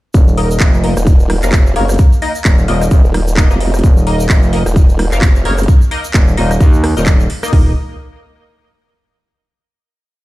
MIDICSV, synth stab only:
0, 0, Header, 1, 2, 480
1, 0, Start_track
1, 0, Key_signature, -6, "minor"
1, 0, Tempo, 461538
1, 149, Time_signature, 4, 2, 24, 8
1, 10650, End_track
2, 0, Start_track
2, 0, Title_t, "Synth stab"
2, 0, Program_c, 0, 62
2, 389, Note_on_c, 0, 58, 90
2, 389, Note_on_c, 0, 70, 82
2, 389, Note_on_c, 0, 75, 101
2, 390, Note_on_c, 0, 63, 84
2, 845, Note_off_c, 0, 58, 0
2, 845, Note_off_c, 0, 63, 0
2, 845, Note_off_c, 0, 70, 0
2, 845, Note_off_c, 0, 75, 0
2, 869, Note_on_c, 0, 58, 82
2, 869, Note_on_c, 0, 63, 77
2, 869, Note_on_c, 0, 70, 78
2, 869, Note_on_c, 0, 75, 90
2, 969, Note_off_c, 0, 58, 0
2, 969, Note_off_c, 0, 63, 0
2, 969, Note_off_c, 0, 70, 0
2, 969, Note_off_c, 0, 75, 0
2, 1487, Note_on_c, 0, 58, 89
2, 1487, Note_on_c, 0, 63, 85
2, 1487, Note_on_c, 0, 70, 81
2, 1487, Note_on_c, 0, 77, 98
2, 1611, Note_off_c, 0, 58, 0
2, 1611, Note_off_c, 0, 63, 0
2, 1611, Note_off_c, 0, 70, 0
2, 1611, Note_off_c, 0, 77, 0
2, 1829, Note_on_c, 0, 63, 87
2, 1829, Note_on_c, 0, 70, 88
2, 1830, Note_on_c, 0, 58, 96
2, 1830, Note_on_c, 0, 73, 106
2, 1929, Note_off_c, 0, 58, 0
2, 1929, Note_off_c, 0, 63, 0
2, 1929, Note_off_c, 0, 70, 0
2, 1929, Note_off_c, 0, 73, 0
2, 2309, Note_on_c, 0, 58, 101
2, 2309, Note_on_c, 0, 63, 89
2, 2309, Note_on_c, 0, 70, 90
2, 2309, Note_on_c, 0, 75, 108
2, 2409, Note_off_c, 0, 58, 0
2, 2409, Note_off_c, 0, 63, 0
2, 2409, Note_off_c, 0, 70, 0
2, 2409, Note_off_c, 0, 75, 0
2, 2789, Note_on_c, 0, 58, 93
2, 2789, Note_on_c, 0, 63, 82
2, 2789, Note_on_c, 0, 70, 82
2, 2789, Note_on_c, 0, 75, 98
2, 2943, Note_off_c, 0, 58, 0
2, 2943, Note_off_c, 0, 63, 0
2, 2943, Note_off_c, 0, 70, 0
2, 2943, Note_off_c, 0, 75, 0
2, 3509, Note_on_c, 0, 58, 93
2, 3509, Note_on_c, 0, 63, 84
2, 3509, Note_on_c, 0, 75, 102
2, 3510, Note_on_c, 0, 70, 83
2, 3609, Note_off_c, 0, 58, 0
2, 3609, Note_off_c, 0, 63, 0
2, 3609, Note_off_c, 0, 70, 0
2, 3609, Note_off_c, 0, 75, 0
2, 3648, Note_on_c, 0, 58, 83
2, 3648, Note_on_c, 0, 63, 77
2, 3648, Note_on_c, 0, 70, 77
2, 3648, Note_on_c, 0, 75, 89
2, 4205, Note_off_c, 0, 58, 0
2, 4205, Note_off_c, 0, 63, 0
2, 4205, Note_off_c, 0, 70, 0
2, 4205, Note_off_c, 0, 75, 0
2, 4228, Note_on_c, 0, 63, 82
2, 4229, Note_on_c, 0, 58, 93
2, 4229, Note_on_c, 0, 70, 85
2, 4229, Note_on_c, 0, 75, 102
2, 4684, Note_off_c, 0, 58, 0
2, 4684, Note_off_c, 0, 63, 0
2, 4684, Note_off_c, 0, 70, 0
2, 4684, Note_off_c, 0, 75, 0
2, 4709, Note_on_c, 0, 58, 88
2, 4709, Note_on_c, 0, 63, 77
2, 4709, Note_on_c, 0, 70, 80
2, 4709, Note_on_c, 0, 75, 93
2, 4809, Note_off_c, 0, 58, 0
2, 4809, Note_off_c, 0, 63, 0
2, 4809, Note_off_c, 0, 70, 0
2, 4809, Note_off_c, 0, 75, 0
2, 5327, Note_on_c, 0, 58, 92
2, 5327, Note_on_c, 0, 63, 83
2, 5327, Note_on_c, 0, 70, 82
2, 5327, Note_on_c, 0, 77, 101
2, 5451, Note_off_c, 0, 58, 0
2, 5451, Note_off_c, 0, 63, 0
2, 5451, Note_off_c, 0, 70, 0
2, 5451, Note_off_c, 0, 77, 0
2, 5669, Note_on_c, 0, 58, 95
2, 5669, Note_on_c, 0, 70, 86
2, 5669, Note_on_c, 0, 73, 104
2, 5670, Note_on_c, 0, 63, 92
2, 5769, Note_off_c, 0, 58, 0
2, 5769, Note_off_c, 0, 63, 0
2, 5769, Note_off_c, 0, 70, 0
2, 5769, Note_off_c, 0, 73, 0
2, 6149, Note_on_c, 0, 58, 97
2, 6149, Note_on_c, 0, 63, 91
2, 6149, Note_on_c, 0, 70, 87
2, 6149, Note_on_c, 0, 75, 109
2, 6249, Note_off_c, 0, 58, 0
2, 6249, Note_off_c, 0, 63, 0
2, 6249, Note_off_c, 0, 70, 0
2, 6249, Note_off_c, 0, 75, 0
2, 6629, Note_on_c, 0, 58, 89
2, 6629, Note_on_c, 0, 63, 83
2, 6629, Note_on_c, 0, 70, 83
2, 6629, Note_on_c, 0, 75, 101
2, 6783, Note_off_c, 0, 58, 0
2, 6783, Note_off_c, 0, 63, 0
2, 6783, Note_off_c, 0, 70, 0
2, 6783, Note_off_c, 0, 75, 0
2, 7247, Note_on_c, 0, 58, 87
2, 7247, Note_on_c, 0, 63, 80
2, 7247, Note_on_c, 0, 70, 79
2, 7247, Note_on_c, 0, 75, 96
2, 7371, Note_off_c, 0, 58, 0
2, 7371, Note_off_c, 0, 63, 0
2, 7371, Note_off_c, 0, 70, 0
2, 7371, Note_off_c, 0, 75, 0
2, 7728, Note_on_c, 0, 58, 93
2, 7728, Note_on_c, 0, 63, 85
2, 7728, Note_on_c, 0, 70, 85
2, 7728, Note_on_c, 0, 75, 104
2, 7817, Note_off_c, 0, 58, 0
2, 7817, Note_off_c, 0, 63, 0
2, 7817, Note_off_c, 0, 70, 0
2, 7817, Note_off_c, 0, 75, 0
2, 7830, Note_on_c, 0, 63, 77
2, 7830, Note_on_c, 0, 70, 80
2, 7830, Note_on_c, 0, 75, 96
2, 7831, Note_on_c, 0, 58, 85
2, 8015, Note_off_c, 0, 58, 0
2, 8015, Note_off_c, 0, 63, 0
2, 8015, Note_off_c, 0, 70, 0
2, 8015, Note_off_c, 0, 75, 0
2, 10650, End_track
0, 0, End_of_file